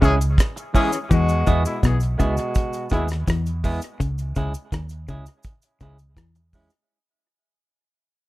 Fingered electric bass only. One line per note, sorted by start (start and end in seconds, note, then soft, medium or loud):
0.02 0.36 C#2 medium
1.11 1.44 E2 loud
1.47 1.64 E2 loud
1.83 2.17 B1 medium
2.20 2.37 C#2 medium
2.92 3.25 D#2 medium
3.28 3.78 E2 medium
4.00 4.34 C#2 loud
4.37 4.53 C#2 medium
4.72 5.06 D#2 medium
5.09 5.26 C#2 medium
5.81 6.17 C#2 medium
6.17 6.67 E2 loud